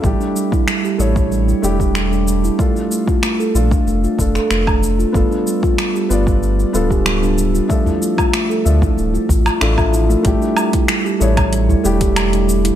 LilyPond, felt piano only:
\new Staff \with { instrumentName = "Felt piano" } { \time 4/4 \tempo 4 = 94 <a d' e' g'>4. <a d' e' cis''>4 <a d' e' g'>8 r4 | <d' f' a'>4. <d' f' a'>4 <d' f' a'>4. | <b d' f' a'>4. <b d' f' d''>4 <b d' f' a'>8 r4 | <f d' a' e''>4. <f d' a' e''>4 r8 <d' e' f' a'>16 <f d' e''>8. |
<a d' e' g'>4. <a d' e' cis''>4 <a d' e' g'>8 r4 | }